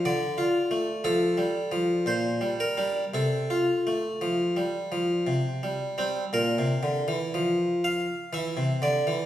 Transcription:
<<
  \new Staff \with { instrumentName = "Harpsichord" } { \time 3/4 \key bes \lydian \tempo 4 = 59 d''4 a'4 c''8 bes'8 | a'2~ a'8 r8 | bes'4. f''8 e''8 d''8 | }
  \new Staff \with { instrumentName = "Harpsichord" } { \clef bass \time 3/4 \key bes \lydian \tuplet 3/2 { d8 f'8 a8 f8 g8 f8 bes,8 g8 <g d'>8 } | \tuplet 3/2 { c8 f'8 a8 f8 g8 f8 c8 g8 <g c'>8 } | bes,16 c16 d16 e16 f4 e16 c16 d16 e16 | }
>>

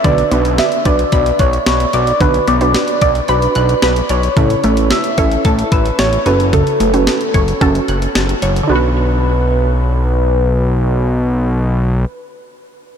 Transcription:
<<
  \new Staff \with { instrumentName = "Synth arpeggio sound" } { \time 4/4 \key b \minor \tempo 4 = 111 d8 b8 r8 d''8 b''8 fis'''8 b''8 d''8 | d8 b8 r8 d''8 b''8 fis'''8 b''8 d''8 | cis8 a8 r8 cis''8 a''8 e'''8 a''8 cis''8 | cis8 a8 r8 cis''8 a''8 fis'''8 a''8 cis''8 |
<d b fis'>1~ | <d b fis'>1 | }
  \new Staff \with { instrumentName = "Soft synth lead" } { \time 4/4 \key b \minor d''4 e''8 d''4 cis''8 cis''8 d''8 | b'8 d''4 d''8 b'4 b'8 cis''8~ | cis''4 e''4 a'8 b'8 cis''8 b'8 | a'2. r4 |
b'1~ | b'1 | }
  \new Staff \with { instrumentName = "Synth pluck" } { \time 4/4 \key b \minor <d' fis' b'>16 r16 <d' fis' b'>8. r16 <d' fis' b'>4~ <d' fis' b'>16 r4 r16 | <d' fis' b'>8 r16 <d' fis' b'>8. r8 <d' fis' b'>4~ <d' fis' b'>16 r8. | <cis' e' a'>16 r16 <cis' e' a'>8. r16 <cis' e' a'>4~ <cis' e' a'>16 r8. <cis' fis' a'>8~ | <cis' fis' a'>8 r16 <cis' fis' b'>8. r8 <cis' fis' a'>4~ <cis' fis' a'>16 r8. |
<d' fis' b'>1~ | <d' fis' b'>1 | }
  \new Staff \with { instrumentName = "Analog synth bass" } { \clef bass \time 4/4 \key b \minor b,,8 b,,8. r16 b,,8 b,,8 b,,8 b,,8 b,,8 | b,,8 b,,8. r16 b,,8 b,,8 b,,8 b,,8 b,,8 | a,,8 a,,8. r16 a,,8 a,,8 a,,8 a,,8 fis,,8~ | fis,,8 fis,,8. r16 fis,,8 fis,,8 fis,,8 fis,,8 fis,,8 |
b,,1~ | b,,1 | }
  \new DrumStaff \with { instrumentName = "Drums" } \drummode { \time 4/4 <hh bd>16 hh16 hh16 hh16 <hh sn>16 hh16 <hh bd>16 hh16 <hh bd>16 hh16 <hh bd>16 hh16 <hh sn>16 hh16 hh16 hh16 | <hh bd>16 hh16 hh16 hh16 <hh sn>16 hh16 <hh bd>16 hh16 hh16 hh16 hh16 hh16 <hh sn>16 hh16 hh16 hh16 | <hh bd>16 hh16 hh16 hh16 <hh sn>16 hh16 <hh bd>16 hh16 <hh bd>16 hh16 <hh bd>16 hh16 <hh sn>16 hh16 hh16 hh16 | <hh bd>16 hh16 hh16 hh16 <hh sn>16 hh16 <hh bd>16 hh16 <hh bd>16 hh16 hh16 hh16 <hh sn>16 hh16 hh16 hh16 |
r4 r4 r4 r4 | r4 r4 r4 r4 | }
>>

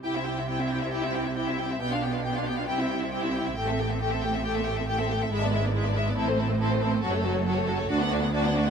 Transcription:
<<
  \new Staff \with { instrumentName = "Violin section" } { \time 4/4 \key c \major \tempo 4 = 138 g''16 e''16 g''16 e''16 g''16 e''16 g''16 e''16 g''16 e''16 g''16 e''16 g''16 e''16 g''16 e''16 | g''16 f''16 g''16 f''16 g''16 f''16 g''16 f''16 g''16 e''16 g''16 e''16 g''16 e''16 g''16 e''16 | g''16 e''16 g''16 e''16 g''16 e''16 g''16 e''16 g''16 e''16 g''16 e''16 g''16 e''16 g''16 e''16 | e''16 d''16 e''16 d''16 e''16 d''16 e''16 d''16 a'16 c''16 a'16 c''16 a'16 c''16 a'16 c''16 |
\key fis \minor a'16 cis''16 a'16 cis''16 a'16 cis''16 a'16 cis''16 d''16 fis''16 d''16 fis''16 d''16 fis''16 d''16 fis''16 | }
  \new Staff \with { instrumentName = "Violin section" } { \time 4/4 \key c \major g'16 e'16 g'16 e'16 g'16 e'16 g'16 e'16 g'16 e'16 g'16 e'16 g'16 e'16 g'16 e'16 | g'16 f'16 g'16 f'16 g'16 f'16 g'16 f'16 g'16 e'16 g'16 e'16 g'16 e'16 g'16 e'16 | g'16 a'16 g'16 a'16 g'16 a'16 g'16 a'16 g'16 a'16 g'16 a'16 g'16 a'16 g'16 a'16 | e'16 d'16 e'16 d'16 e'16 d'16 e'16 d'16 e'16 c'16 e'16 c'16 e'16 c'16 e'16 c'16 |
\key fis \minor fis'16 a'16 fis'16 a'16 fis'16 a'16 fis'16 a'16 fis'16 d'16 fis'16 d'16 fis'16 d'16 fis'16 d'16 | }
  \new Staff \with { instrumentName = "Viola section" } { \time 4/4 \key c \major e'16 c'16 e'16 c'16 e'16 c'16 e'16 c'16 e'16 c'16 e'16 c'16 e'16 c'16 e'16 c'16 | b16 d'16 b16 d'16 b16 d'16 b16 d'16 e'16 c'16 e'16 c'16 e'16 c'16 e'16 c'16 | a16 c'16 a16 c'16 a16 c'16 a16 c'16 a16 c'16 a16 c'16 a16 c'16 a16 c'16 | gis16 b16 gis16 b16 gis16 b16 gis16 b16 c'16 a16 c'16 a16 c'16 a16 c'16 a16 |
\key fis \minor fis16 a16 fis16 a16 fis16 a16 fis16 a16 d'16 b16 d'16 b16 d'16 b16 d'16 b16 | }
  \new Staff \with { instrumentName = "Cello section" } { \clef bass \time 4/4 \key c \major c1 | b,2 c2 | a,1 | gis,2 a,2 |
\key fis \minor fis,2 d,2 | }
  \new Staff \with { instrumentName = "Double bass section" } { \clef bass \time 4/4 \key c \major c,1 | b,,2 c,2 | a,,1 | gis,,2 a,,2 |
\key fis \minor fis,,2 d,2 | }
>>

